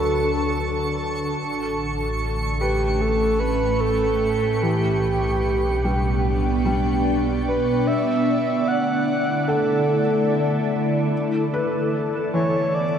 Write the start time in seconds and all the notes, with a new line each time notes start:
Already playing: D2 D3 F#3 D4 F#4 A4 F#5 A5 C#6
1.37 A1 A2
1.86 A3
2.25 C#4
2.60 G4 B4
2.80 B4
2.86 G5
3.01 A4
3.39 B4
3.80 A4
4.61 B1 B2 E3 G4
4.80 B3
4.88 D4
5.85 G3
6.10 D5 G5
6.65 G3
7.48 B4
7.87 D3 E5
8.04 E4
8.36 A3
8.68 F#5
9.31 A4
9.48 A4 F#5
11.12 E3
11.54 B4
11.59 B3
12.34 E3 C#5 E5
12.74 D5